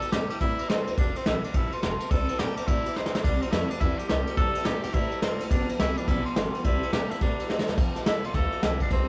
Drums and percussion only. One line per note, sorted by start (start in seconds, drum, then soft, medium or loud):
0.02 ride medium
0.12 snare loud
0.12 ride medium
0.30 ride medium
0.41 kick loud
0.41 ride medium
0.59 ride medium
0.70 snare loud
0.70 ride medium
0.87 ride medium
0.98 kick loud
0.98 ride medium
1.16 ride medium
1.26 snare loud
1.26 ride medium
1.44 ride medium
1.54 kick loud
1.54 ride medium
1.72 ride medium
1.83 snare loud
1.83 ride medium
2.00 ride medium
2.11 kick loud
2.11 ride loud
2.29 ride medium
2.39 snare loud
2.39 ride medium
2.57 ride medium
2.68 kick loud
2.68 ride medium
2.86 ride medium
2.96 snare medium
3.06 snare medium
3.15 snare loud
3.24 kick loud
3.24 ride loud
3.42 ride medium
3.52 snare loud
3.52 ride medium
3.71 ride medium
3.81 kick loud
3.81 ride medium
3.99 ride medium
4.09 snare loud
4.09 ride medium
4.27 ride medium
4.37 kick loud
4.37 ride medium
4.55 ride medium
4.65 snare loud
4.65 ride medium
4.83 snare soft
4.83 ride medium
4.94 kick loud
4.94 ride medium
5.12 ride medium
5.22 snare loud
5.22 ride medium
5.40 ride medium
5.51 kick loud
5.51 ride loud
5.69 ride medium
5.79 snare loud
5.79 ride loud
5.97 ride medium
6.08 kick loud
6.08 ride medium
6.26 ride medium
6.36 snare loud
6.36 ride medium
6.54 ride medium
6.65 kick loud
6.65 ride medium
6.83 ride medium
6.93 snare loud
6.93 ride medium
7.11 ride medium
7.21 kick loud
7.21 ride medium
7.39 ride medium
7.50 snare medium
7.59 snare medium
7.69 snare loud
7.78 kick loud
7.78 ride loud
7.96 snare soft
7.96 ride medium
8.06 snare loud
8.06 ride medium
8.24 ride medium
8.34 kick medium
8.34 snare soft
8.34 ride medium
8.52 ride medium
8.63 snare loud
8.63 ride medium
8.80 kick medium
8.80 ride medium
8.91 kick loud
8.91 snare soft
8.91 ride medium